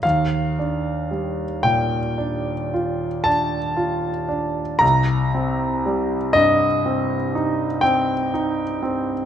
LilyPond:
\new Staff \with { instrumentName = "Grand piano" } { \time 9/8 \key ees \lydian \tempo 4. = 39 << { f''4. g''4. a''4. | bes''4. ees''4. g''8 r4 | } \\ { ees,8 d'8 g8 bes,8 d'8 f'8 d'8 f'8 d'8 | c,8 c'8 g8 g,8 c'8 ees'8 c'8 ees'8 c'8 | } >> }